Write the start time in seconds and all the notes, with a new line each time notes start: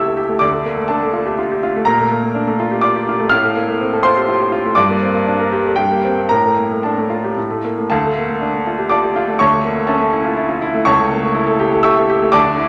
Already playing: C#2 A3 A#3 E4 G4 A4 C#5 E5 C#6 E6
0.05 A4
0.17 G4
0.29 A3
0.39 D2 D5 D6
0.53 A3
0.65 A#3
0.77 A3
0.88 D4 A4 A5
1.03 A3
1.13 F4
1.26 G4
1.39 F4
1.52 G4
1.63 F4
1.76 A3
1.85 A#2 A#4 A#5
2.00 A3
2.12 A#3
2.24 A3
2.35 D4
2.47 A3
2.60 F4
2.71 G4
2.81 F4 D5 D6
2.96 G4
3.09 F4
3.20 A3
3.29 A2 F5 F6
3.44 A3
3.56 A#3
3.68 A3
3.81 C4
3.93 A4
4.03 F4 C5 C6
4.17 G4
4.29 F4
4.40 G4
4.52 F4
4.66 A3
4.75 G2 D5 D6
4.90 A#3
5.02 C4
5.14 A#3
5.27 D4
5.40 A#4
5.52 G4
5.65 A4
5.76 G2 G4 G5
5.91 A#3
6.04 C4
6.18 A#3
6.29 A2 A#4 A#5
6.45 A3
6.58 A#3
6.71 A3
6.83 D4 A4 A5
6.98 A3
7.10 F4
7.24 G4
7.37 A2
7.51 A3
7.65 A#3
7.78 A3
7.90 D2 A4 F5 A5
8.05 A3
8.18 A#3
8.30 A3
8.41 D4
8.54 A3
8.67 F4
8.78 G4
8.89 F4 D5 A5 D6
9.04 G4
9.16 F4
9.28 A3
9.39 D2 C#5 A5 C#6
9.52 A3
9.65 A#3
9.77 A3
9.87 C#4 A4 E5 A5
10.00 A3
10.12 E4
10.25 F4
10.37 E4
10.49 F4
10.62 E4
10.74 A3
10.85 C#2 C#5 A5 C#6
10.99 A3
11.12 A#3
11.23 A3
11.35 E4
11.47 A4
11.60 G4
11.72 A4
11.83 G4 E5 C#6 E6
11.97 A4
12.10 G4
12.22 A3
12.32 D2 D5 A5 D6
12.46 D4
12.58 E4